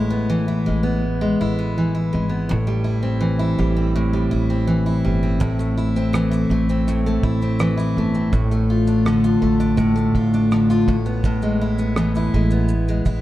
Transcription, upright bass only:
0, 0, Header, 1, 2, 480
1, 0, Start_track
1, 0, Tempo, 729040
1, 1644, Time_signature, 4, 2, 24, 8
1, 8700, End_track
2, 0, Start_track
2, 0, Title_t, "Upright bass"
2, 0, Program_c, 0, 32
2, 0, Note_on_c, 0, 33, 84
2, 419, Note_off_c, 0, 33, 0
2, 449, Note_on_c, 0, 33, 80
2, 900, Note_off_c, 0, 33, 0
2, 929, Note_on_c, 0, 33, 82
2, 1380, Note_off_c, 0, 33, 0
2, 1411, Note_on_c, 0, 32, 76
2, 1629, Note_off_c, 0, 32, 0
2, 1652, Note_on_c, 0, 33, 107
2, 2343, Note_off_c, 0, 33, 0
2, 2366, Note_on_c, 0, 33, 91
2, 2819, Note_off_c, 0, 33, 0
2, 2850, Note_on_c, 0, 33, 71
2, 3302, Note_off_c, 0, 33, 0
2, 3326, Note_on_c, 0, 31, 77
2, 3547, Note_off_c, 0, 31, 0
2, 3561, Note_on_c, 0, 33, 96
2, 4258, Note_off_c, 0, 33, 0
2, 4279, Note_on_c, 0, 33, 87
2, 4736, Note_off_c, 0, 33, 0
2, 4767, Note_on_c, 0, 33, 72
2, 5220, Note_off_c, 0, 33, 0
2, 5246, Note_on_c, 0, 31, 76
2, 5467, Note_off_c, 0, 31, 0
2, 5482, Note_on_c, 0, 33, 103
2, 6177, Note_off_c, 0, 33, 0
2, 6201, Note_on_c, 0, 33, 77
2, 6656, Note_off_c, 0, 33, 0
2, 6682, Note_on_c, 0, 33, 75
2, 7136, Note_off_c, 0, 33, 0
2, 7164, Note_on_c, 0, 33, 94
2, 8097, Note_off_c, 0, 33, 0
2, 8123, Note_on_c, 0, 33, 85
2, 8576, Note_off_c, 0, 33, 0
2, 8598, Note_on_c, 0, 33, 76
2, 8700, Note_off_c, 0, 33, 0
2, 8700, End_track
0, 0, End_of_file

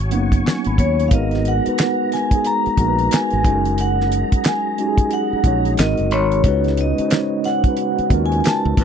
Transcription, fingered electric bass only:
0, 0, Header, 1, 3, 480
1, 0, Start_track
1, 0, Key_signature, 5, "minor"
1, 0, Tempo, 666667
1, 801, Time_signature, 4, 2, 24, 8
1, 6366, End_track
2, 0, Start_track
2, 0, Title_t, "Fingered electric bass"
2, 0, Program_c, 0, 33
2, 0, Note_on_c, 0, 32, 96
2, 95, Note_off_c, 0, 32, 0
2, 95, Note_on_c, 0, 30, 76
2, 302, Note_off_c, 0, 30, 0
2, 479, Note_on_c, 0, 32, 74
2, 569, Note_on_c, 0, 39, 87
2, 580, Note_off_c, 0, 32, 0
2, 778, Note_off_c, 0, 39, 0
2, 805, Note_on_c, 0, 32, 96
2, 1147, Note_off_c, 0, 32, 0
2, 2002, Note_on_c, 0, 34, 72
2, 2214, Note_off_c, 0, 34, 0
2, 2399, Note_on_c, 0, 32, 73
2, 2485, Note_off_c, 0, 32, 0
2, 2485, Note_on_c, 0, 30, 96
2, 3040, Note_off_c, 0, 30, 0
2, 3921, Note_on_c, 0, 34, 85
2, 4134, Note_off_c, 0, 34, 0
2, 4170, Note_on_c, 0, 32, 92
2, 4297, Note_off_c, 0, 32, 0
2, 4314, Note_on_c, 0, 30, 76
2, 4403, Note_off_c, 0, 30, 0
2, 4403, Note_on_c, 0, 32, 95
2, 4615, Note_off_c, 0, 32, 0
2, 4641, Note_on_c, 0, 37, 90
2, 4985, Note_off_c, 0, 37, 0
2, 5839, Note_on_c, 0, 39, 84
2, 6053, Note_off_c, 0, 39, 0
2, 6231, Note_on_c, 0, 37, 88
2, 6312, Note_off_c, 0, 37, 0
2, 6320, Note_on_c, 0, 33, 92
2, 6366, Note_off_c, 0, 33, 0
2, 6366, End_track
3, 0, Start_track
3, 0, Title_t, "Muted fingered electric bass strokes"
3, 1202, Note_on_c, 9, 29, 46
3, 1274, Note_off_c, 9, 29, 0
3, 1920, Note_on_c, 9, 29, 43
3, 1992, Note_off_c, 9, 29, 0
3, 3118, Note_on_c, 9, 29, 46
3, 3190, Note_off_c, 9, 29, 0
3, 3837, Note_on_c, 9, 29, 43
3, 3909, Note_off_c, 9, 29, 0
3, 5031, Note_on_c, 9, 29, 46
3, 5103, Note_off_c, 9, 29, 0
3, 5752, Note_on_c, 9, 29, 41
3, 5824, Note_off_c, 9, 29, 0
3, 6366, End_track
0, 0, End_of_file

